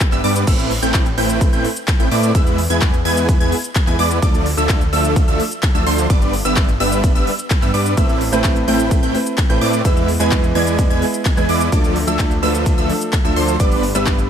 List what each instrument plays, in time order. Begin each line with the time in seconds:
Already playing: string section D3 G3 B3 G4
0.00 kick, clap, closed hi-hat, shaker
0.12 detuned saw bass G1, supersaw synth G3 B3 D4 B4 E5, synth pluck E6, clap, closed hi-hat, shaker
0.24 detuned saw bass G2, supersaw synth G3 B3 D4 B4 D5, synth pluck D6, open hi-hat
0.36 closed hi-hat, shaker
0.47 detuned saw bass A1, supersaw synth A3 C4 E4 B4 E5, synth pluck E6, kick, closed hi-hat, ride, crash, shaker
0.59 closed hi-hat, shaker
0.71 open hi-hat
0.82 detuned saw bass A1, supersaw synth A3 C4 E4 B4 G5, synth pluck G6, closed hi-hat, shaker
0.94 kick, clap, closed hi-hat, ride, shaker
1.06 closed hi-hat, shaker
1.18 detuned saw bass A1, supersaw synth A3 C4 E4 B4 G5, synth pluck G6, open hi-hat
1.29 closed hi-hat, shaker
1.41 kick, closed hi-hat, ride, shaker
1.53 detuned saw bass A1, supersaw synth A3 C4 E4 B4 G5, synth pluck G6, closed hi-hat, shaker
1.65 open hi-hat
1.76 closed hi-hat, shaker
1.88 kick, clap, closed hi-hat, ride, shaker
2.00 detuned saw bass A1, supersaw synth A3 C4 E4 B4 G5, synth pluck G6, closed hi-hat, shaker
2.11 detuned saw bass A2, supersaw synth A3 C4 E4 B4 D5, synth pluck D6, open hi-hat
2.23 closed hi-hat, shaker
2.35 detuned saw bass E2, supersaw synth G#3 B3 E4 B4 E5, synth pluck E6, kick, closed hi-hat, ride, shaker
2.47 closed hi-hat, shaker
2.58 open hi-hat
2.70 detuned saw bass E2, supersaw synth G#3 B3 E4 B4 G#5, synth pluck G#6, closed hi-hat, shaker
2.82 kick, clap, closed hi-hat, ride, shaker
2.94 closed hi-hat, shaker
3.05 detuned saw bass E2, supersaw synth G#3 B3 E4 B4 G#5, synth pluck G#6, open hi-hat
3.17 closed hi-hat, shaker
3.29 kick, closed hi-hat, ride, shaker
3.40 detuned saw bass E2, supersaw synth G#3 B3 E4 B4 G#5, synth pluck G#6, closed hi-hat, shaker
3.52 open hi-hat
3.64 closed hi-hat, shaker
3.76 kick, clap, closed hi-hat, ride, shaker
3.87 detuned saw bass E2, supersaw synth G#3 B3 E4 B4 G#5, synth pluck G#6, clap, closed hi-hat, shaker
3.99 detuned saw bass E2, supersaw synth G#3 B3 E4 B4 D5, synth pluck D6, open hi-hat
4.11 closed hi-hat, shaker
4.22 detuned saw bass D2, supersaw synth F3 A3 D4 A4 D5, synth pluck D6, kick, closed hi-hat, ride, shaker
4.34 closed hi-hat, shaker
4.46 open hi-hat
4.57 detuned saw bass D2, supersaw synth F3 A3 D4 A4 E5, synth pluck E6, closed hi-hat, shaker
4.69 kick, clap, closed hi-hat, ride, shaker
4.81 closed hi-hat, shaker
4.93 detuned saw bass D2, supersaw synth F3 A3 D4 A4 E5, synth pluck E6, open hi-hat
5.05 closed hi-hat, shaker
5.16 kick, closed hi-hat, ride, shaker
5.28 detuned saw bass D2, supersaw synth F3 A3 D4 A4 E5, synth pluck E6, closed hi-hat, shaker
5.40 open hi-hat
5.51 closed hi-hat, shaker
5.63 kick, clap, closed hi-hat, ride, shaker
5.75 detuned saw bass D2, supersaw synth F3 A3 D4 A4 E5, synth pluck E6, closed hi-hat, shaker
5.86 detuned saw bass D2, supersaw synth F3 A3 D4 A4 C5, synth pluck C6, open hi-hat
5.98 closed hi-hat, shaker
6.10 detuned saw bass G1, supersaw synth G3 B3 D4 B4 D5, synth pluck D6, kick, closed hi-hat, ride, shaker
6.22 closed hi-hat, shaker
6.33 open hi-hat
6.45 detuned saw bass G1, supersaw synth G3 B3 D4 B4 E5, synth pluck E6, closed hi-hat, shaker
6.57 kick, clap, closed hi-hat, ride, shaker
6.69 closed hi-hat, shaker
6.80 detuned saw bass G1, supersaw synth G3 B3 D4 B4 E5, synth pluck E6, open hi-hat
6.92 closed hi-hat, shaker
7.04 kick, closed hi-hat, ride, shaker
7.15 detuned saw bass G1, supersaw synth G3 B3 D4 B4 E5, synth pluck E6, closed hi-hat, shaker
7.27 open hi-hat
7.39 closed hi-hat, shaker
7.50 kick, clap, closed hi-hat, ride, shaker
7.62 detuned saw bass G2, supersaw synth G3 B3 D4 B4 E5, synth pluck E6, clap, closed hi-hat, shaker
7.74 detuned saw bass G2, supersaw synth G3 B3 D4 B4 D5, synth pluck D6, open hi-hat
7.86 closed hi-hat, shaker
7.97 detuned saw bass A1, grand piano A3 C4 E4 B4, supersaw synth A3 C4 E4 B4 E5, synth pluck E6, kick, closed hi-hat, ride, shaker
8.09 closed hi-hat, shaker
8.21 open hi-hat
8.32 detuned saw bass A1, grand piano A3 C4 E4 B4, supersaw synth A3 C4 E4 B4 G5, synth pluck G6, closed hi-hat, shaker
8.44 kick, clap, closed hi-hat, ride, shaker
8.56 closed hi-hat, shaker
8.67 detuned saw bass A1, grand piano A3 C4 E4, supersaw synth A3 C4 E4 B4 G5, synth pluck G6, open hi-hat
8.79 closed hi-hat, shaker
8.91 kick, closed hi-hat, ride, shaker
9.03 detuned saw bass A1, supersaw synth A3 C4 E4 B4 G5, synth pluck G6, closed hi-hat, shaker
9.14 grand piano A3 C4 E4 B4, open hi-hat
9.26 closed hi-hat, shaker
9.38 kick, clap, closed hi-hat, ride, shaker
9.49 detuned saw bass A1, grand piano A3 C4 E4 B4, supersaw synth A3 C4 E4 B4 G5, synth pluck G6, closed hi-hat, shaker
9.61 detuned saw bass A2, supersaw synth A3 C4 E4 B4 D5, synth pluck D6, open hi-hat
9.73 shaker
9.84 detuned saw bass E2, grand piano G#3 B3 E4 B4, supersaw synth G#3 B3 E4 B4 E5, synth pluck E6, kick, closed hi-hat, ride, shaker
9.97 closed hi-hat, shaker
10.08 open hi-hat
10.19 detuned saw bass E2, grand piano G#3 B3 E4 B4, supersaw synth G#3 B3 E4 B4 G#5, synth pluck G#6, closed hi-hat, shaker
10.32 kick, clap, closed hi-hat, ride, shaker
10.44 closed hi-hat, shaker
10.55 detuned saw bass E2, grand piano G#3 B3 E4 D5, supersaw synth G#3 B3 E4 B4 G#5, synth pluck G#6, open hi-hat
10.67 closed hi-hat, shaker
10.79 kick, closed hi-hat, ride, shaker
10.90 detuned saw bass E2, supersaw synth G#3 B3 E4 B4 G#5, synth pluck G#6, closed hi-hat, shaker
11.01 grand piano G#3 B3 E4 B4, open hi-hat
11.14 closed hi-hat, shaker
11.25 kick, clap, closed hi-hat, ride, shaker
11.37 detuned saw bass E2, grand piano G#3 B3 E4 B4, supersaw synth G#3 B3 E4 B4 G#5, synth pluck G#6, clap, closed hi-hat, shaker
11.49 detuned saw bass E2, supersaw synth G#3 B3 E4 B4 D5, synth pluck D6, open hi-hat
11.61 closed hi-hat, shaker
11.72 detuned saw bass D2, grand piano F3 A3 D4 A4, supersaw synth F3 A3 D4 A4 D5, synth pluck D6, kick, closed hi-hat, ride, shaker
11.84 closed hi-hat, shaker
11.96 open hi-hat
12.07 detuned saw bass D2, grand piano F3 A3 D4 A4, supersaw synth F3 A3 D4 A4 E5, synth pluck E6, closed hi-hat, shaker
12.19 kick, clap, closed hi-hat, ride, shaker
12.31 closed hi-hat, shaker
12.42 detuned saw bass D2, grand piano F3 A3 D4 B4, supersaw synth F3 A3 D4 A4 E5, synth pluck E6, open hi-hat
12.54 closed hi-hat, shaker
12.66 kick, closed hi-hat, ride, shaker
12.78 detuned saw bass D2, supersaw synth F3 A3 D4 A4 E5, synth pluck E6, closed hi-hat, shaker
12.89 grand piano F3 A3 D4 A4, open hi-hat
13.01 closed hi-hat, shaker
13.13 kick, clap, closed hi-hat, ride, shaker
13.24 detuned saw bass D2, grand piano F3 A3 D4 A4, supersaw synth F3 A3 D4 A4 E5, synth pluck E6, closed hi-hat, shaker
13.36 detuned saw bass D2, supersaw synth F3 A3 D4 A4 C5, synth pluck C6, open hi-hat
13.48 closed hi-hat, shaker
13.59 detuned saw bass G1, grand piano G3 B3 D4 B4, supersaw synth G3 B3 D4 B4 D5, synth pluck D6, kick, closed hi-hat, ride, shaker
13.72 open hi-hat, shaker
13.83 open hi-hat
13.95 detuned saw bass G1, grand piano G3 B3 D4 B4, supersaw synth G3 B3 D4 B4 E5, synth pluck E6, closed hi-hat, shaker
14.07 kick, clap, closed hi-hat, ride, shaker
14.19 closed hi-hat, shaker